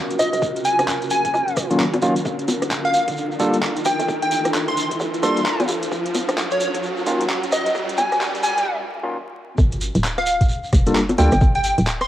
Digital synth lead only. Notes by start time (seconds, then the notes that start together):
0.19 D#5
0.65 G#5
1.11 G#5
2.85 F5
2.94 F5
3.86 G5
4.23 G5
4.32 G5
4.68 C6
4.77 C6
5.23 C6
6.52 C#5
6.61 C#5
7.52 D#5
7.98 G#5
8.43 G#5
10.18 F5
10.27 F5
11.19 G5
11.56 G5
11.65 G5
12.01 C6